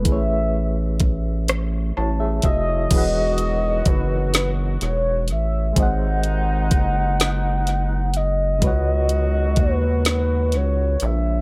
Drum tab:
CC |------|x-----|------|------|
HH |x-xx-x|xxxxxx|xxxxxx|xxxxxx|
SD |---r--|---o--|---o--|---o--|
BD |o-o--o|o-o---|o-o---|o-o---|